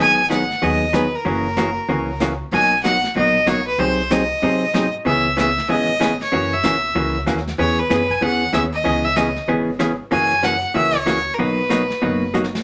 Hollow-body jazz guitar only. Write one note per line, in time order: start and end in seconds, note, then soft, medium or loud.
0.00 0.20 D#3 medium
0.00 0.20 F#3 medium
0.00 0.20 B3 medium
0.00 0.20 D#4 medium
0.00 0.20 G#4 medium
0.30 0.41 D#3 medium
0.30 0.42 F#3 medium
0.30 0.42 B3 medium
0.30 0.42 D#4 medium
0.30 0.42 G#4 medium
0.62 0.83 D#3 soft
0.62 0.83 F#3 medium
0.62 0.83 B3 medium
0.62 0.83 D#4 medium
0.62 0.84 G#4 medium
0.93 1.05 D#3 medium
0.93 1.05 F#3 medium
0.93 1.05 B3 medium
0.93 1.05 D#4 medium
0.93 1.05 G#4 medium
1.25 1.46 C#3 medium
1.25 1.46 E3 medium
1.25 1.46 A#3 medium
1.25 1.47 C#4 medium
1.25 1.47 F#4 medium
1.57 1.68 C#3 medium
1.57 1.69 E3 medium
1.57 1.69 A#3 medium
1.57 1.69 C#4 medium
1.57 1.69 F#4 medium
1.89 2.10 C#3 soft
1.89 2.10 E3 medium
1.89 2.10 A#3 medium
1.89 2.10 C#4 medium
1.89 2.10 F#4 medium
2.21 2.32 C#3 medium
2.21 2.32 E3 medium
2.21 2.32 A#3 medium
2.21 2.33 C#4 medium
2.21 2.33 F#4 medium
2.52 2.73 B2 medium
2.52 2.74 F#3 medium
2.52 2.74 A#3 medium
2.52 2.74 D#4 medium
2.52 2.74 F#4 medium
2.84 2.95 B2 medium
2.84 2.96 F#3 medium
2.84 2.96 A#3 medium
2.84 2.96 D#4 medium
2.84 2.96 F#4 medium
3.16 3.37 B2 medium
3.16 3.37 F#3 medium
3.16 3.37 A#3 medium
3.16 3.37 D#4 medium
3.16 3.37 F#4 medium
3.46 3.58 B2 medium
3.46 3.59 F#3 medium
3.46 3.59 A#3 medium
3.46 3.59 D#4 medium
3.46 3.59 F#4 medium
3.79 4.00 C3 medium
3.79 4.00 F#3 medium
3.79 4.00 C4 medium
3.79 4.00 D#4 medium
3.79 4.00 G#4 medium
3.79 4.01 C5 medium
4.10 4.22 C3 medium
4.10 4.22 F#3 medium
4.10 4.22 C4 medium
4.10 4.22 D#4 medium
4.10 4.23 G#4 medium
4.10 4.23 C5 medium
4.42 4.63 C3 medium
4.42 4.64 F#3 medium
4.42 4.64 C4 medium
4.42 4.64 D#4 medium
4.42 4.64 G#4 medium
4.42 4.64 C5 medium
4.74 4.85 C3 medium
4.74 4.86 F#3 medium
4.74 4.86 C4 medium
4.74 4.86 D#4 medium
4.74 4.86 G#4 medium
4.74 4.86 C5 medium
5.05 5.26 C#3 medium
5.05 5.27 E3 medium
5.05 5.27 B3 medium
5.05 5.27 C#4 medium
5.05 5.27 G#4 medium
5.37 5.48 C#3 medium
5.37 5.49 E3 medium
5.37 5.49 B3 medium
5.37 5.49 C#4 medium
5.37 5.49 G#4 medium
5.69 5.90 C#3 medium
5.69 5.90 E3 medium
5.69 5.90 B3 medium
5.69 5.90 C#4 medium
5.69 5.90 G#4 medium
6.00 6.12 C#3 medium
6.00 6.12 E3 medium
6.00 6.12 B3 medium
6.00 6.12 C#4 medium
6.00 6.12 G#4 medium
6.32 6.53 C#3 medium
6.32 6.53 E3 medium
6.32 6.53 A#3 medium
6.32 6.54 C#4 medium
6.32 6.54 F#4 medium
6.64 6.75 C#3 medium
6.64 6.75 E3 medium
6.64 6.76 A#3 medium
6.64 6.76 C#4 medium
6.64 6.76 F#4 medium
6.95 7.16 C#3 medium
6.95 7.16 E3 medium
6.95 7.17 A#3 medium
6.95 7.17 C#4 medium
6.95 7.17 F#4 medium
7.26 7.38 C#3 medium
7.26 7.38 E3 medium
7.26 7.39 A#3 medium
7.26 7.39 C#4 medium
7.26 7.39 F#4 medium
7.58 7.80 E3 medium
7.58 7.80 B3 medium
7.58 7.80 C#4 medium
7.58 7.80 G#4 medium
7.90 8.02 E3 medium
7.90 8.02 B3 medium
7.90 8.02 C#4 medium
7.90 8.02 G#4 medium
8.21 8.43 E3 medium
8.21 8.43 B3 medium
8.21 8.43 C#4 medium
8.21 8.43 G#4 medium
8.53 8.65 E3 medium
8.53 8.65 B3 medium
8.53 8.65 C#4 medium
8.53 8.65 G#4 medium
8.84 9.06 C#3 medium
8.84 9.06 E3 medium
8.84 9.06 B3 medium
8.84 9.06 C#4 medium
8.84 9.06 G#4 medium
9.16 9.28 C#3 medium
9.16 9.28 E3 medium
9.16 9.28 B3 medium
9.16 9.29 C#4 medium
9.16 9.29 G#4 medium
9.48 9.69 C#3 soft
9.48 9.69 E3 medium
9.48 9.70 B3 medium
9.48 9.70 C#4 medium
9.48 9.70 G#4 medium
9.79 9.91 C#3 medium
9.79 9.91 E3 medium
9.79 9.91 B3 medium
9.79 9.92 C#4 medium
9.79 9.92 G#4 medium
10.11 10.32 C#3 medium
10.11 10.33 E3 medium
10.11 10.33 A#3 medium
10.11 10.33 C#4 medium
10.11 10.33 F#4 medium
10.43 10.54 C#3 medium
10.43 10.55 E3 medium
10.43 10.55 A#3 medium
10.43 10.55 C#4 medium
10.43 10.55 F#4 medium
10.74 10.96 C#3 medium
10.74 10.96 E3 medium
10.74 10.96 A#3 medium
10.74 10.96 C#4 medium
10.74 10.96 F#4 medium
11.06 11.18 C#3 medium
11.06 11.18 E3 medium
11.06 11.18 A#3 medium
11.06 11.18 C#4 medium
11.06 11.18 F#4 medium
11.38 11.59 B2 soft
11.38 11.60 F#3 medium
11.38 11.60 A#3 medium
11.38 11.60 D#4 medium
11.38 11.60 F#4 medium
11.70 11.81 B2 medium
11.70 11.82 F#3 medium
11.70 11.82 A#3 medium
11.70 11.82 D#4 medium
11.70 11.82 F#4 medium
12.02 12.23 B2 medium
12.02 12.23 F#3 medium
12.02 12.23 A#3 medium
12.02 12.23 D#4 medium
12.02 12.23 F#4 medium
12.34 12.45 B2 medium
12.34 12.45 F#3 medium
12.34 12.45 A#3 medium
12.34 12.46 D#4 medium
12.34 12.46 F#4 medium